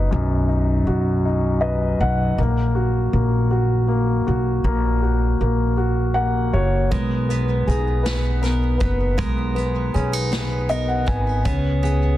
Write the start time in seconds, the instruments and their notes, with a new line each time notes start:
Already playing: grand piano D#4 F#4 B4
0.11 upright bass B1, grand piano F#2
0.49 grand piano D#4
0.87 upright bass B1, grand piano F#4
1.25 grand piano D#4
1.61 grand piano B4 D#5
2.00 upright bass B1, grand piano D#4 F#5
2.38 upright bass A#1, grand piano A#3
2.75 grand piano F#4
3.13 upright bass A#1, grand piano A#3
3.51 grand piano F#4
3.88 grand piano A#3
4.27 upright bass B1, grand piano F#4
4.64 upright bass A#1, grand piano A#3
5.02 grand piano F#4
5.41 upright bass A#1, grand piano A#3
5.77 grand piano F#4
6.14 grand piano A#3 F#5
6.53 upright bass F#1, grand piano F#4 C#5
6.91 upright bass B1, steel-string acoustic guitar G#3 A#4, grand piano B3, kick, closed hi-hat
7.29 steel-string acoustic guitar B3, grand piano B4, closed hi-hat
7.67 upright bass B1, steel-string acoustic guitar D#4, grand piano G#4, closed hi-hat
8.03 steel-string acoustic guitar B3, grand piano B4, snare, closed hi-hat
8.42 grand piano B3, steel-string acoustic guitar A#4, snare, closed hi-hat
8.78 upright bass F#1, steel-string acoustic guitar B3, grand piano B4, kick, closed hi-hat
9.18 upright bass B1, steel-string acoustic guitar G#3 A#4, grand piano B3, kick, closed hi-hat
9.55 steel-string acoustic guitar B3, grand piano B4, closed hi-hat
9.94 upright bass B1, steel-string acoustic guitar C#4, grand piano G#4, closed hi-hat
10.13 steel-string acoustic guitar D#4
10.32 steel-string acoustic guitar B3, grand piano B4, snare, closed hi-hat
10.69 grand piano B3 D#5, steel-string acoustic guitar A#4, closed hi-hat
10.88 grand piano F#5
11.06 upright bass G#1, steel-string acoustic guitar B3, grand piano B4 G#5, kick, closed hi-hat
11.45 upright bass C#2, steel-string acoustic guitar B3 G#4, grand piano C#4, kick, closed hi-hat
11.83 steel-string acoustic guitar B3, grand piano G#4, closed hi-hat